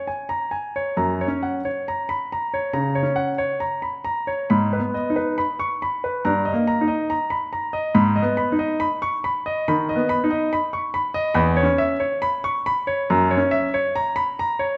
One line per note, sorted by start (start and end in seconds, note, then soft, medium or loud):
0.07 0.31 G#5 medium
0.29 0.52 A#5 medium
0.51 0.76 G#5 soft
0.76 0.98 C#5 medium
0.97 1.27 F#2 medium
0.97 1.21 A#5 medium
1.21 1.45 C#5 medium
1.28 1.60 C#4 medium
1.43 1.67 F#5 soft
1.65 1.89 C#5 medium
1.88 2.11 A#5 medium
2.09 2.31 B5 medium
2.32 2.55 A#5 medium
2.54 2.76 C#5 medium
2.73 3.04 C#3 medium
2.73 2.97 A#5 medium
2.95 3.19 C#5 medium
3.03 3.34 C#4 soft
3.16 3.40 F#5 medium
3.38 3.63 C#5 medium
3.60 3.85 A#5 medium
3.82 4.06 B5 soft
4.05 4.29 A#5 medium
4.27 4.50 C#5 medium
4.50 4.79 G#2 medium
4.50 4.74 B5 medium
4.73 4.96 B4 medium
4.79 5.11 B3 medium
4.94 5.18 D#5 medium
5.10 5.41 D#4 soft
5.16 5.40 B4 medium
5.38 5.62 B5 medium
5.59 5.82 C#6 medium
5.82 6.05 B5 medium
6.04 6.26 B4 medium
6.25 6.53 G2 medium
6.25 6.48 A#5 medium
6.45 6.69 D#5 medium
6.53 6.83 A#3 medium
6.67 6.90 A#5 medium
6.81 7.11 D#4 medium
6.88 7.11 D#5 medium
7.10 7.33 A#5 medium
7.30 7.52 B5 medium
7.53 7.75 A#5 medium
7.73 7.95 D#5 medium
7.95 8.22 G#2 medium
7.95 8.17 B5 medium
8.16 8.38 D#5 medium
8.22 8.53 B3 medium
8.37 8.60 B5 medium
8.52 8.82 D#4 medium
8.59 8.82 D#5 medium
8.80 9.03 B5 medium
9.02 9.24 C#6 medium
9.24 9.47 B5 medium
9.46 9.68 D#5 medium
9.68 9.97 D#3 medium
9.68 9.90 B5 medium
9.89 10.11 D#5 medium
9.96 10.25 B3 medium
10.09 10.32 B5 medium
10.24 10.53 D#4 medium
10.31 10.53 D#5 medium
10.53 10.75 B5 medium
10.73 10.95 C#6 medium
10.94 11.17 B5 medium
11.14 11.37 D#5 medium
11.34 11.65 E2 medium
11.34 11.59 B5 medium
11.57 11.81 C#5 medium
11.63 11.95 C#4 medium
11.78 12.03 E5 medium
12.00 12.24 C#5 medium
12.22 12.46 B5 medium
12.44 12.66 C#6 medium
12.66 12.89 B5 medium
12.87 13.09 C#5 medium
13.10 13.38 F#2 medium
13.10 13.32 A#5 medium
13.31 13.53 C#5 medium
13.37 13.68 C#4 medium
13.51 13.74 E5 medium
13.74 13.97 C#5 medium
13.96 14.18 A#5 medium
14.16 14.38 B5 medium
14.39 14.62 A#5 medium
14.59 14.77 C#5 medium